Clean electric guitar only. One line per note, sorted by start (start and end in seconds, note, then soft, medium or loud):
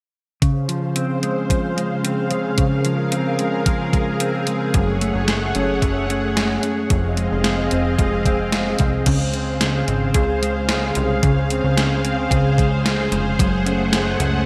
0.42 2.56 C#3 medium
0.68 1.48 F3 soft
0.96 2.02 C4 medium
1.23 1.76 G#3 medium
1.49 2.84 F3 soft
1.76 2.30 G#3 medium
2.04 3.11 C4 soft
2.31 3.39 G#3 medium
2.58 4.74 C#3 medium
2.85 3.65 F3 medium
3.12 4.20 C4 medium
3.39 3.93 G#3 medium
3.66 4.80 F3 medium
3.93 4.46 G#3 soft
4.21 4.80 C4 medium
4.47 5.01 G#3 soft
4.74 6.90 F#2 medium
5.01 5.81 A3 medium
5.29 6.35 G#4 medium
5.55 6.08 C#4 medium
5.82 6.96 A3 medium
6.09 6.61 C#4 medium
6.36 7.44 G#4 medium
6.63 6.96 C#4 medium
6.90 9.07 F2 medium
7.17 7.98 G#3 soft
7.45 8.52 G#4 medium
7.72 8.25 C4 medium
7.99 10.42 G#3 medium
8.26 8.80 C4 medium
8.53 9.60 G#4 medium
8.80 9.33 C4 medium
9.07 11.21 C#3 medium
9.33 9.87 C4 medium
9.61 10.14 G#4 medium
9.88 11.49 C4 medium
10.14 10.69 G#4 medium
10.42 10.95 G#3 medium
10.69 11.76 G#4 medium
10.96 12.57 G#3 soft
11.23 13.39 C#3 medium
11.50 12.02 C4 soft
11.76 12.30 G#4 medium
12.03 13.44 C4 medium
12.30 12.84 G#4 medium
12.57 13.11 G#3 medium
12.85 13.93 G#4 medium
13.12 14.46 G#3 medium
13.39 14.46 F#2 medium
13.66 14.19 C#4 medium
13.93 14.46 G#4 medium
14.20 14.46 C#4 medium